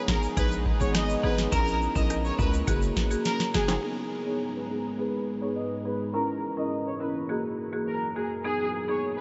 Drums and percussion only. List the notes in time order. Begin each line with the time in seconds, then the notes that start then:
0.08 kick, snare, shaker
0.23 shaker
0.37 kick, closed hi-hat, shaker
0.51 shaker
0.66 kick
0.81 shaker
0.95 cross-stick, snare, closed hi-hat, shaker
1.09 shaker
1.38 snare, shaker
1.52 kick, closed hi-hat, shaker
1.67 shaker
1.82 shaker
1.96 kick, shaker
2.10 cross-stick, closed hi-hat, shaker
2.25 shaker
2.39 kick, shaker
2.53 shaker
2.67 kick, closed hi-hat, shaker
2.82 shaker
2.96 kick, snare, shaker
3.11 shaker
3.25 snare, closed hi-hat, shaker
3.40 snare, shaker
3.54 snare, shaker
3.68 snare, high timbale, shaker